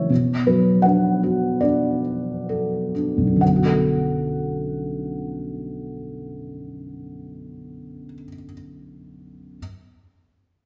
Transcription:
Already playing: F#2 C#3 E3 A#3 C#5 E5
0.10 B2
0.47 F#3 B4
0.82 D4 F#5
1.23 F#4
1.61 D4 D5
2.49 A4
2.95 D4
3.18 B1
3.27 F#2
3.36 D3
3.41 F#5
3.46 B3
3.56 F#4
3.65 A4

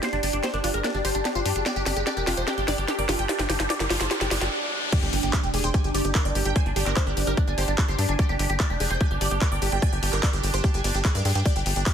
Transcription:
Already playing: D4 G4 D5 G5, riser
0.03 G4 C5, snare, closed hi-hat
0.13 G1 D4, closed hi-hat
0.23 G1 D4, open hi-hat
0.33 G1 D4, closed hi-hat
0.43 G4 C5, snare, closed hi-hat
0.54 G1 D4 A#4, closed hi-hat
0.64 G1 D4 F4, open hi-hat
0.74 G1 G#4 A#4, closed hi-hat
0.84 D4 A#4, snare, closed hi-hat
0.94 G1 D4 G4, closed hi-hat
1.05 G1 G4 C5, open hi-hat
1.15 G1 D4, closed hi-hat
1.25 D4 G4, snare, closed hi-hat
1.35 G1 F4 C5, closed hi-hat
1.45 G2 D4 G4, open hi-hat
1.56 G1 D4 G#4, closed hi-hat
1.66 G4 D5, snare, closed hi-hat
1.76 G1 G4, closed hi-hat
1.86 G1 G4, snare, open hi-hat
1.97 G1 G4 G#4, closed hi-hat
2.07 G4 D5, snare, closed hi-hat
2.17 F1 G4 A#4, closed hi-hat
2.27 F1 F4 G4, snare, open hi-hat
2.37 F1 C5, closed hi-hat
2.48 G4, snare, closed hi-hat
2.58 G1 G4, closed hi-hat
2.68 G1 D5, snare, open hi-hat
2.78 G1 G4, closed hi-hat
2.88 G4, snare, closed hi-hat
2.98 G1 A#4 D5, closed hi-hat
3.09 G1 F4 G4, snare, open hi-hat
3.19 G1 G4 G5, closed hi-hat
3.29 G4 D5, snare, closed hi-hat, noise sweep
3.39 G1 G4, snare, closed hi-hat
3.50 G1 G4, snare, open hi-hat
3.60 G1 G4, snare, closed hi-hat
3.70 G4 D5, snare, closed hi-hat
3.80 G1 G4 A#4, snare, closed hi-hat
3.90 G1 F4 G4, snare, open hi-hat
4.01 G1 G#4 C5, snare, closed hi-hat
4.11 G4 A#4, snare, closed hi-hat
4.21 G1 G4, snare, closed hi-hat
4.31 G1 G4 D5, snare, open hi-hat
4.41 G1 G4, snare, closed hi-hat
4.92 D4 G4 D5, kick, closed hi-hat, crash, impact
5.03 G1 G4, closed hi-hat
5.13 G1 G4, open hi-hat
5.23 G1 G4, closed hi-hat
5.33 G4 D5, kick, clap, closed hi-hat
5.43 F1 G4, closed hi-hat
5.54 F1 G4 G#4, open hi-hat
5.64 F1 C5 G5, closed hi-hat
5.74 G4 G#5, kick, closed hi-hat
5.84 G1 G4, closed hi-hat
5.94 G1 G4 D5, open hi-hat
6.05 G1 G4, closed hi-hat
6.15 A#4, kick, clap, closed hi-hat
6.25 G1 D5 G5, closed hi-hat
6.35 G1 G4, open hi-hat
6.45 G1 G4 G5, closed hi-hat
6.56 C5 G#5, kick, closed hi-hat
6.66 G1 D4, closed hi-hat
6.76 G1 D4 G4, open hi-hat
6.86 G1 D4 A#4, clap, closed hi-hat
6.97 G4 C5, kick, clap, closed hi-hat
7.07 G1 D4 G4, closed hi-hat
7.17 G1 D4 G4, open hi-hat
7.27 G1 G4 A#4, closed hi-hat
7.37 D4, kick, closed hi-hat
7.48 G1 D4 G#5, closed hi-hat
7.58 G1 G4 C5, open hi-hat
7.68 G1 D4, closed hi-hat
7.78 D4 G4, kick, clap, closed hi-hat
7.88 G1 G4 C5, closed hi-hat
7.99 G2 D4 G4, open hi-hat
8.09 G1 D4 G#5, closed hi-hat
8.19 G4 D5, kick, closed hi-hat
8.29 G1 G4, closed hi-hat
8.39 G1 G4, open hi-hat
8.50 G1 G4, closed hi-hat
8.60 G4 D5, kick, clap, closed hi-hat
8.70 F1 G4, closed hi-hat
8.80 F1 G4 G#4, open hi-hat
8.90 F1 C5 G5, closed hi-hat
9.01 G4 G#5, kick, closed hi-hat
9.11 G1 G4, closed hi-hat
9.21 G1 G4 D5, open hi-hat
9.31 G1 G4, closed hi-hat
9.41 G4 A#4, kick, clap, closed hi-hat
9.52 G1 D5 G5, closed hi-hat
9.62 G1 G4, open hi-hat
9.72 G1 G4 G5, closed hi-hat
9.82 D5 G#5, kick, closed hi-hat
9.92 G1 G4, closed hi-hat
10.03 G1 G4, open hi-hat
10.13 G1 G4 A#4, clap, closed hi-hat
10.23 D5, kick, clap, closed hi-hat
10.33 G1 G4, closed hi-hat
10.43 G1 G4, open hi-hat
10.54 G1 G4 C5, closed hi-hat
10.64 G4, kick, closed hi-hat
10.74 G1 G4 G#5, closed hi-hat
10.84 G1 G4 D5, open hi-hat
10.94 G1 G4, closed hi-hat
11.05 G#4, kick, clap, closed hi-hat
11.15 G2 A#4 D5, closed hi-hat
11.25 G2 G4 G#4, open hi-hat
11.35 G2 G4 G5, closed hi-hat
11.45 G4 D5, kick, closed hi-hat
11.56 G1 G4, closed hi-hat
11.66 G1 G4, open hi-hat
11.76 G1 G4, closed hi-hat
11.86 G4 D5, kick, clap, closed hi-hat

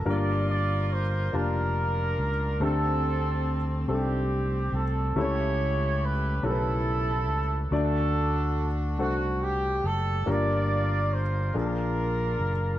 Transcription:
0.05 G1 G2 A#3 D4 F4 G4 A#4 D5
0.50 D5
0.92 C5
1.33 F1 A#3 D4 F4 G4 A#4 A5
2.18 C#2
2.60 D2 D3 A3 C4 D4 G4 A4
2.65 C4
3.88 C2 A3 C4 D4 G4 A4
4.72 C2 A4
5.16 C#2 C#3 A3 C4 E4 G4 A4 C#5
5.22 C#4
6.03 B4
6.43 B1 A3 C#4 E4 G4 A4 A#4
6.51 B4
7.28 C#2
7.71 D2 D3 A3 D4 F#4 A4 D5
8.98 C2 A3 D4 F#4 A4 C5 F#5
9.43 G4
9.84 F#1 A4
10.26 G1 G2 A#3 D4 F4 G4 A#4 D5
10.30 F4
11.13 C5
11.54 A#1 A#2 A#3 D4 F4 G#4 A#4
12.39 F#1

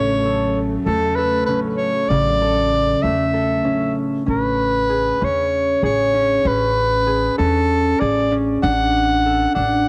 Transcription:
Already playing: A1 C#3 F#3 A3 C#4 A4 C#5
0.25 A4
0.85 E2 A3 A4
1.15 A4 B4
1.46 A1 C#4 B4
1.77 C#5
2.09 A1 C#3 D5
2.42 A4
3.02 E2 A3 E5
3.34 A4
3.65 A1 C#4
4.26 A1 C#4 B4
4.89 G#4
5.21 E2 C#4 C#5
5.83 A1 G#4 C#5
6.14 C#4
6.45 A1 C#4 B4
7.07 G#4
7.38 E2 C#4 A4
8.00 A1 G#4 D5
8.32 C#4
8.62 A1 D4 F#5
9.26 A4
9.55 A1 D4 F#5

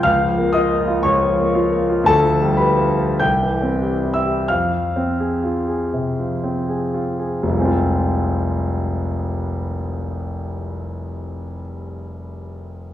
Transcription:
0.03 C#2 F5 F6
0.21 F3
0.38 A#3
0.53 F4 D#5 D#6
0.73 A#3
0.88 F4
1.03 C#2 C#5 C#6
1.22 F3
1.39 A#3
1.55 F4
1.72 A#3
1.89 F4
2.04 D2 A4 A5
2.23 F3
2.42 G3
2.57 G4 B4 B5
2.78 F4
2.99 G4
3.19 C2 G5 G6
3.42 E3
3.62 C4
3.82 G4
4.04 E4
4.14 E5 E6
4.26 G4
4.48 F2 F5 F6
4.96 C4
5.20 G#4
5.44 F4
5.68 G#4
5.94 C3
6.19 F3
6.44 C4
6.69 G#4
6.94 F4
7.19 G#4
7.43 F1
7.47 C2
7.52 F3
7.57 G#3
7.61 C4
7.65 F4

